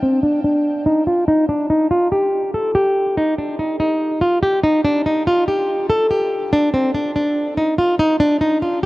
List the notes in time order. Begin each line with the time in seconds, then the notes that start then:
0.03 C4
0.23 D4
0.44 D4
0.86 D#4
1.07 F4
1.28 D#4
1.49 D4
1.70 D#4
1.91 F4
2.12 G4
2.54 A4
2.75 G4
3.17 D#4
3.38 D4
3.59 D#4
3.80 D#4
4.22 F4
4.43 G4
4.64 D#4
4.84 D4
5.06 D#4
5.27 F4
5.48 G4
5.90 A4
6.11 G4
6.53 D4
6.74 C4
6.95 D4
7.16 D4
7.57 D#4
7.79 F4
8.00 D#4
8.20 D4
8.41 D#4
8.62 F4